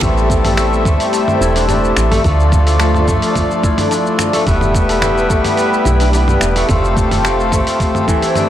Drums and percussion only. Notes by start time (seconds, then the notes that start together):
0.02 kick, mid tom, open hi-hat, shaker
0.17 shaker
0.30 kick, shaker
0.45 mid tom, open hi-hat, shaker
0.57 finger snap, open hi-hat, shaker
0.73 shaker
0.85 kick, mid tom, shaker
1.00 open hi-hat, shaker
1.13 open hi-hat, shaker
1.28 mid tom, shaker
1.42 shaker
1.56 open hi-hat, shaker
1.69 mid tom, open hi-hat, shaker
1.84 shaker
1.97 finger snap, shaker
2.12 mid tom, open hi-hat, shaker
2.24 kick, open hi-hat, shaker
2.40 shaker
2.52 kick, mid tom, shaker
2.67 open hi-hat, shaker
2.80 finger snap, open hi-hat, shaker
2.95 mid tom, shaker
3.08 kick, shaker
3.22 open hi-hat, shaker
3.35 kick, mid tom, open hi-hat, shaker
3.51 shaker
3.64 kick, shaker
3.78 mid tom, open hi-hat, shaker
3.91 open hi-hat, shaker
4.06 shaker
4.19 finger snap, mid tom, shaker
4.33 open hi-hat, shaker
4.47 kick, open hi-hat, shaker
4.61 mid tom, shaker
4.75 kick, shaker
4.89 open hi-hat, shaker
5.02 finger snap, mid tom, open hi-hat, shaker
5.18 shaker
5.30 kick, shaker
5.45 mid tom, open hi-hat, shaker
5.57 open hi-hat, shaker
5.73 shaker
5.85 mid tom, shaker
6.00 open hi-hat, shaker
6.13 open hi-hat, shaker
6.28 mid tom, shaker
6.41 finger snap, shaker
6.56 open hi-hat, shaker
6.69 kick, mid tom, open hi-hat, shaker
6.84 shaker
6.97 kick, shaker
7.11 mid tom, open hi-hat, shaker
7.25 finger snap, open hi-hat, shaker
7.40 shaker
7.52 kick, mid tom, shaker
7.67 open hi-hat, shaker
7.80 kick, open hi-hat, shaker
7.95 mid tom, shaker
8.08 kick, shaker
8.22 open hi-hat, shaker
8.36 mid tom, open hi-hat, shaker